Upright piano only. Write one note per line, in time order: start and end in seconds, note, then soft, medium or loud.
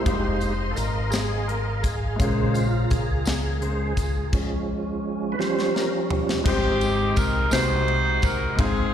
0.03 2.14 G#3 medium
0.03 2.15 D#4 medium
0.08 2.16 F4 medium
0.08 2.18 C5 medium
2.16 4.27 G#3 medium
2.16 4.28 C#4 medium
2.20 3.22 A#2 medium
2.20 4.29 F4 medium
2.20 4.31 A#4 medium
6.44 7.48 G#2 medium
6.44 7.49 G#3 medium
6.44 7.50 C4 medium
6.44 7.51 D#4 medium
6.44 7.53 G4 medium
6.44 7.53 C5 medium
7.51 8.55 C3 medium
7.51 8.55 G#3 medium
7.51 8.56 C4 medium
7.51 8.59 D#4 medium
7.51 8.59 F#4 medium
7.51 7.60 B4 medium
7.61 8.59 C5 medium
8.56 8.94 G#2 medium
8.56 8.94 G#3 medium
8.56 8.94 C4 medium
8.56 8.94 F4 medium
8.60 8.94 C5 medium